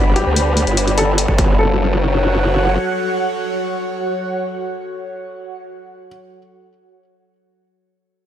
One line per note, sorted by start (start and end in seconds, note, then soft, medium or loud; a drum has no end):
0.00 0.25 G1 medium
0.00 1.55 G3 medium
0.00 1.55 B3 medium
0.00 1.55 D4 medium
0.00 1.59 B4 medium
0.00 1.59 D5 medium
0.00 1.59 B5 medium
0.16 0.90 G4 medium
0.16 closed hi-hat soft
0.26 0.65 D2 medium
0.36 closed hi-hat medium
0.57 closed hi-hat medium
0.67 1.27 G1 medium
0.67 closed hi-hat soft
0.77 closed hi-hat medium
0.88 closed hi-hat soft
0.98 1.51 A4 medium
0.98 closed hi-hat medium
1.18 closed hi-hat medium
1.28 1.57 G1 medium
1.28 kick soft
1.38 kick medium
1.38 closed hi-hat medium
1.59 2.77 F#1 medium
1.59 5.61 F#3 medium
1.59 5.61 F#4 medium
1.59 6.08 A4 medium
1.59 5.61 A4 medium
1.59 5.61 C#5 medium
1.65 5.61 C#5 medium
1.71 5.61 F#5 medium